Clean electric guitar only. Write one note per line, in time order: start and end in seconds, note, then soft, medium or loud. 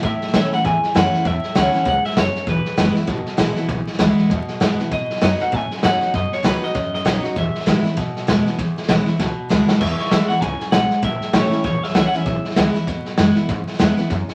0.05 0.34 E5 loud
0.35 0.53 E5 loud
0.54 0.65 F#5 loud
0.66 0.96 G#5 loud
0.97 1.27 F#5 loud
1.27 1.58 E5 medium
1.59 1.87 F#5 loud
1.89 2.05 F#5 loud
2.06 2.18 E5 medium
2.18 2.49 C#5 medium
2.49 2.94 B4 medium
4.93 5.23 D#5 loud
5.24 5.42 D#5 loud
5.42 5.54 F#5 medium
5.54 5.84 G#5 loud
5.84 6.15 F#5 loud
6.15 6.33 D#5 loud
6.33 6.45 C#5 medium
6.45 6.63 B4 medium
6.64 6.94 D#5 loud
6.95 7.23 D#5 medium
7.38 9.48 E5 loud
9.81 10.10 E5 medium
10.11 10.28 E5 loud
10.28 10.41 F#5 medium
10.41 10.72 G#5 loud
10.72 11.04 F#5 loud
11.04 11.32 E5 loud
11.35 11.63 C#5 loud
11.65 11.83 C#5 medium
11.83 11.95 E5 medium
11.95 11.97 F#5 loud
11.99 12.04 E5 medium
12.06 12.15 F#5 medium
12.15 12.76 E5 medium